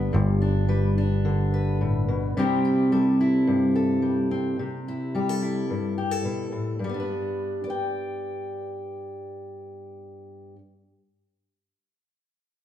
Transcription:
Already playing: picked electric bass G1, steel-string acoustic guitar G2 D3 G3 B3 D4 B4
0.13 picked electric bass G1, steel-string acoustic guitar G2
0.42 steel-string acoustic guitar D4
0.68 steel-string acoustic guitar G3 B4
0.98 steel-string acoustic guitar D4
1.25 steel-string acoustic guitar D3
1.54 steel-string acoustic guitar B4
1.81 steel-string acoustic guitar A2
2.08 steel-string acoustic guitar B2
2.37 steel-string acoustic guitar C3 G3 C4 E4 G4
2.65 steel-string acoustic guitar E4
2.92 steel-string acoustic guitar G3 A4
3.21 steel-string acoustic guitar E4
3.47 steel-string acoustic guitar G2
3.76 steel-string acoustic guitar A4
4.02 steel-string acoustic guitar G3
4.31 steel-string acoustic guitar C4
4.59 steel-string acoustic guitar C3
4.88 steel-string acoustic guitar E4
5.15 steel-string acoustic guitar G3 G4
5.29 steel-string acoustic guitar A4
5.42 steel-string acoustic guitar E4
5.70 steel-string acoustic guitar G2
5.98 steel-string acoustic guitar G4
6.11 steel-string acoustic guitar A4
6.25 steel-string acoustic guitar B2
6.52 steel-string acoustic guitar A2
6.79 steel-string acoustic guitar G2
6.84 steel-string acoustic guitar G3
6.89 steel-string acoustic guitar B3
6.94 steel-string acoustic guitar D4
7.00 steel-string acoustic guitar B4
7.64 steel-string acoustic guitar D5
7.70 steel-string acoustic guitar G5

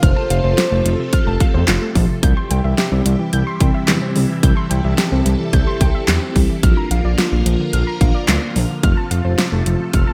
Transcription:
Already playing: string machine F4
0.03 analog synth bass F1, string machine C3 F3 A3 A4, soft synth lead C5, synth pluck F6, kick, closed hi-hat
0.16 synth pluck A5
0.30 analog synth bass F1, synth pluck F5, closed hi-hat
0.44 analog synth bass F1, synth pluck C5
0.58 synth pluck F4, snare, closed hi-hat
0.71 analog synth bass F1, synth pluck A3
0.85 analog synth bass F1, synth pluck F3, closed hi-hat
0.99 synth pluck C3
1.13 synth pluck F6, kick, closed hi-hat
1.27 analog synth bass F1, synth pluck A5
1.40 synth pluck F5, kick, closed hi-hat
1.54 analog synth bass F2, synth pluck C5
1.68 analog synth bass F1, synth pluck F4, snare, clap, closed hi-hat
1.82 synth pluck A3
1.95 analog synth bass A#1, synth pluck F3, kick, open hi-hat
2.09 synth pluck C3
2.23 analog synth bass C2, string machine C3 E3 G3 E4 G4, synth pluck G6, kick, closed hi-hat
2.37 synth pluck C6
2.51 analog synth bass C2, synth pluck G5, closed hi-hat
2.64 analog synth bass C2, synth pluck E5
2.78 synth pluck G4, snare, closed hi-hat
2.92 analog synth bass C2, synth pluck C4
3.06 analog synth bass C2, synth pluck G3, closed hi-hat
3.19 synth pluck E3
3.33 analog synth bass C2, synth pluck G6, closed hi-hat
3.47 synth pluck C6
3.60 analog synth bass C2, synth pluck G5, kick, closed hi-hat
3.74 synth pluck E5
3.88 analog synth bass E2, synth pluck G4, snare, clap, closed hi-hat
4.02 synth pluck C4
4.16 analog synth bass C2, synth pluck G3, open hi-hat
4.29 synth pluck E3
4.43 analog synth bass C2, string machine A4, synth pluck G6, kick, closed hi-hat
4.57 synth pluck C6
4.71 analog synth bass C2, synth pluck G5, closed hi-hat
4.84 analog synth bass C2, synth pluck E5
4.98 synth pluck G4, snare, closed hi-hat
5.12 analog synth bass C2, synth pluck C4
5.26 analog synth bass C2, synth pluck G3, closed hi-hat
5.39 synth pluck E3
5.53 analog synth bass C2, synth pluck G6, kick, closed hi-hat
5.67 synth pluck C6
5.81 analog synth bass C2, synth pluck G5, kick, closed hi-hat
5.95 synth pluck E5
6.08 analog synth bass E2, synth pluck G4, snare, clap, closed hi-hat
6.22 synth pluck C4
6.36 analog synth bass C2, synth pluck G3, kick, open hi-hat
6.50 synth pluck E3
6.63 analog synth bass A#1, string machine D3 F3 A#3 F4 A#4, synth pluck F6, kick, closed hi-hat
6.77 synth pluck A#5
6.91 analog synth bass A#1, synth pluck F5, closed hi-hat
7.05 analog synth bass A#1, synth pluck D5
7.18 synth pluck F4, snare, closed hi-hat
7.32 analog synth bass A#1, synth pluck A#3
7.46 analog synth bass A#1, synth pluck F3, closed hi-hat
7.60 synth pluck D3
7.73 analog synth bass A#1, synth pluck F6, closed hi-hat
7.87 synth pluck A#5
8.01 analog synth bass A#1, synth pluck F5, kick, closed hi-hat
8.15 synth pluck D5
8.28 analog synth bass D2, synth pluck F4, snare, clap, closed hi-hat
8.42 synth pluck A#3
8.56 analog synth bass A#1, synth pluck F3, open hi-hat
8.70 synth pluck D3
8.83 analog synth bass F1, string machine C3 A3 A4, synth pluck F6, kick, closed hi-hat
8.97 synth pluck A5
9.11 analog synth bass F1, synth pluck F5, closed hi-hat
9.25 analog synth bass F1, synth pluck C5
9.38 synth pluck F4, snare, closed hi-hat
9.52 analog synth bass F1, synth pluck A3
9.66 analog synth bass F1, synth pluck F3, closed hi-hat
9.80 synth pluck C3
9.93 analog synth bass F1, synth pluck F6, kick, closed hi-hat
10.07 synth pluck A5

